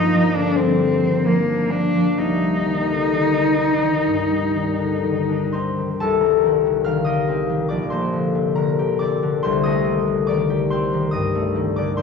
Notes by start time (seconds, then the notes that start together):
Already playing: G2 F3 G3 A#3 D4 D#4 F4
0.15 F3
0.35 D3 D4
0.55 G3 C4
0.80 F3
1.03 D#3
1.26 F3 A#3
1.49 D4
1.70 A#3 D4
1.96 F3
2.18 C2 D#4
2.42 G3
2.66 D#3
2.88 D3
3.12 D#3
3.37 D4
3.58 C4
3.83 D#3
4.07 G2
4.30 G3
4.54 D#3
4.78 D3
5.04 D#3
5.29 D4
5.53 C4 C5 C6
5.78 D#3
6.00 C2 A4 A5
6.21 G3 A#4 A#5
6.45 D#3
6.66 D3
6.84 D#3 F5 F6
7.04 G4 D#5 D#6
7.28 C4
7.50 D#3
7.69 A#1 D5 D6
7.90 A#3 C5 C6
8.13 D3
8.35 C3
8.55 D3 A#4 A#5
8.79 G4
8.99 C4 D5 D6
9.23 D3
9.43 C2 C5 C6
9.63 A3 D#5 D#6
9.87 D#3
10.07 D3
10.27 D#3 D5 D6
10.50 G4
10.70 C4 C5 C6
10.93 D#3
11.11 G2 D#5 D#6
11.35 A3
11.55 D#3
11.76 D3 D5 D6
11.97 C5 C6